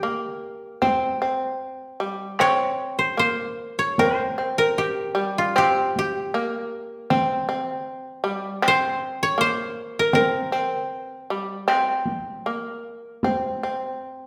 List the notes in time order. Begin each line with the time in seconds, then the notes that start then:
Already playing: G4 A#4 C5
0.03 A#3
0.82 C4, taiko high
1.22 C4
2.00 G3
2.39 C4 C#5, taiko rim
2.99 C5
3.17 A#3 C5
3.79 C#5
3.98 C4 C5, taiko high
4.38 C4
4.58 A#4
4.78 G4
5.15 G3
5.38 F4
5.56 C4 G4, taiko rim
5.96 G4, taiko high
6.34 A#3
7.10 C4, taiko high
7.49 C4
8.24 G3
8.62 C4, taiko rim
8.68 C5
9.23 C#5
9.38 A#3 C5
9.99 A#4
10.13 C4 A#4, taiko high
10.52 C4
10.84 B4
11.29 G3 C5
11.68 C4, taiko rim
12.06 taiko high
12.46 A#3
13.23 C4, taiko high
13.63 C4